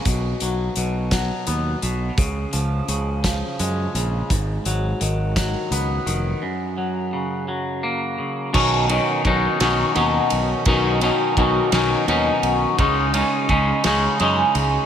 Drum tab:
CC |------|------|------|------|
RD |------|------|------|------|
HH |xxxxxx|xxxxxx|xxxxxx|------|
SD |---o--|---o--|---o--|------|
BD |o--o--|o--o--|o--o--|------|

CC |x-----|------|------|
RD |-xxxxx|xxxxxx|xxxxxx|
HH |------|------|------|
SD |---o--|---o--|---o--|
BD |o-o---|o-o---|o-o---|